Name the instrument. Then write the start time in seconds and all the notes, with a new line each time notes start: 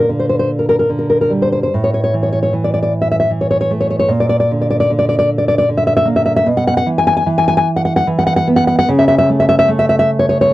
nylon-string guitar
Already playing: A#2
0.09 D3
0.19 C5
0.29 C5
0.39 C5
0.59 A#4
0.69 A#4
0.79 A#4
0.89 D3
0.99 A#4
1.10 A#4
1.21 A#4
1.30 G3
1.42 C5
1.52 C5
1.63 C5
1.74 A2
1.84 C#5
1.94 C#5
2.04 C#5
2.14 E3
2.23 C#5
2.32 C#5
2.43 C#5
2.53 E3
2.64 D5
2.74 D5
2.83 D5
3.02 E5
3.11 E5
3.20 E5
3.30 E3
3.41 C#5
3.51 C#5
3.61 C#5
3.71 A3
3.81 C#5
3.90 C#5
3.99 C#5
4.08 A#2
4.20 D5
4.29 D5
4.40 D5
4.51 D3
4.62 D5
4.70 D5
4.80 D5
4.90 D3
4.99 D5
5.09 D5
5.19 D5
5.38 D5
5.48 D5
5.58 D5
5.69 D3
5.77 E5
5.87 E5
5.97 E5
6.05 A#3
6.16 E5
6.26 E5
6.36 E5
6.46 B2
6.57 F#5
6.67 F#5
6.77 F#5
6.86 E3
6.98 G#5
7.07 G#5
7.17 G#5
7.26 E3
7.38 G#5
7.48 G#5
7.57 G#5
7.76 F#5
7.85 F#5
7.96 F#5
8.07 E3
8.19 F#5
8.27 F#5
8.36 F#5
8.48 B3
8.56 F#5
8.67 F#5
8.79 F#5
8.89 C#3
8.99 E5
9.08 E5
9.18 E5
9.30 A3
9.40 E5
9.49 E5
9.59 E5
9.68 A3
9.79 E5
9.89 E5
9.99 E5
10.19 C#5
10.29 C#5
10.41 C#5
10.51 A3